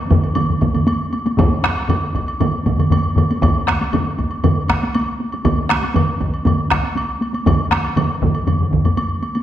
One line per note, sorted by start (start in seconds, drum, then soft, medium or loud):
0.10 taiko medium
0.10 taiko low-mid loud
0.10 taiko mid loud
0.10 taiko high medium
0.10 high woodblock soft
0.24 high woodblock soft
0.35 taiko low-mid medium
0.35 taiko mid medium
0.35 taiko high medium
0.35 high woodblock medium
0.49 taiko low-mid medium
0.49 taiko mid medium
0.61 taiko medium
0.61 taiko low-mid medium
0.61 taiko mid medium
0.61 taiko high medium
0.61 high woodblock soft
0.74 taiko low-mid medium
0.74 taiko mid medium
0.74 taiko high medium
0.74 high woodblock soft
0.87 taiko high medium
0.87 high woodblock medium
1.13 taiko high medium
1.13 high woodblock soft
1.26 taiko high medium
1.26 high woodblock soft
1.38 taiko loud
1.38 taiko low-mid medium
1.38 taiko mid medium
1.38 taiko high medium
1.38 high woodblock medium
1.64 taiko rim medium
1.64 taiko high medium
1.64 high woodblock soft
1.77 high woodblock soft
1.89 taiko low-mid medium
1.89 taiko mid loud
1.89 taiko high medium
1.89 high woodblock medium
2.15 taiko medium
2.15 taiko high medium
2.15 high woodblock soft
2.28 high woodblock soft
2.40 taiko low-mid loud
2.40 taiko mid loud
2.40 taiko high medium
2.40 high woodblock soft
2.66 taiko medium
2.66 taiko low-mid medium
2.66 taiko mid medium
2.66 taiko high medium
2.66 high woodblock soft
2.78 taiko low-mid medium
2.78 taiko mid medium
2.78 taiko high medium
2.78 high woodblock soft
2.90 taiko low-mid medium
2.90 taiko mid loud
2.90 taiko high medium
2.90 high woodblock medium
3.16 taiko low-mid medium
3.16 taiko mid loud
3.16 taiko high medium
3.16 high woodblock soft
3.31 taiko high medium
3.31 high woodblock soft
3.42 taiko loud
3.42 taiko low-mid medium
3.42 taiko mid loud
3.42 taiko high medium
3.42 high woodblock medium
3.68 taiko rim medium
3.68 taiko high medium
3.68 high woodblock soft
3.81 taiko high medium
3.81 high woodblock soft
3.93 taiko low-mid loud
3.93 taiko mid medium
3.93 taiko high medium
3.93 high woodblock medium
4.19 taiko medium
4.19 taiko high soft
4.19 high woodblock soft
4.31 high woodblock soft
4.44 taiko low-mid loud
4.44 taiko mid loud
4.44 taiko high medium
4.44 high woodblock soft
4.68 taiko rim medium
4.68 taiko medium
4.68 taiko high medium
4.68 high woodblock soft
4.81 taiko high medium
4.81 high woodblock soft
4.95 taiko high medium
4.95 high woodblock medium
5.20 taiko high soft
5.32 taiko high medium
5.32 high woodblock soft
5.45 taiko loud
5.45 taiko low-mid loud
5.45 taiko mid loud
5.45 taiko high medium
5.45 high woodblock medium
5.69 taiko rim medium
5.69 taiko high soft
5.69 high woodblock soft
5.83 taiko high medium
5.83 high woodblock soft
5.95 taiko low-mid medium
5.95 taiko mid loud
5.95 taiko high medium
5.95 high woodblock medium
6.21 taiko medium
6.21 taiko high medium
6.21 high woodblock soft
6.34 high woodblock soft
6.46 taiko low-mid medium
6.46 taiko mid loud
6.46 taiko high medium
6.46 high woodblock soft
6.71 taiko rim medium
6.71 taiko medium
6.71 taiko high medium
6.71 high woodblock soft
6.83 taiko high medium
6.83 high woodblock soft
6.95 taiko high medium
6.95 high woodblock medium
7.21 taiko high medium
7.21 high woodblock soft
7.33 taiko high medium
7.33 high woodblock soft
7.46 taiko medium
7.46 taiko low-mid loud
7.46 taiko mid loud
7.46 taiko high medium
7.46 high woodblock medium
7.71 taiko rim medium
7.71 taiko high soft
7.71 high woodblock soft
7.84 high woodblock soft
7.96 taiko low-mid medium
7.96 taiko mid loud
7.96 taiko high medium
7.96 high woodblock medium
8.22 taiko medium
8.22 taiko low-mid loud
8.22 taiko mid loud
8.22 taiko high soft
8.35 high woodblock soft
8.47 taiko low-mid medium
8.47 taiko mid medium
8.47 taiko high medium
8.47 high woodblock soft
8.60 taiko low-mid medium
8.60 taiko mid medium
8.72 taiko medium
8.72 taiko low-mid medium
8.72 taiko mid medium
8.84 taiko low-mid medium
8.84 taiko mid medium
8.84 taiko high soft
8.84 high woodblock soft
8.97 taiko high medium
8.97 high woodblock medium
9.23 taiko high soft
9.23 high woodblock soft
9.35 taiko high medium
9.35 high woodblock soft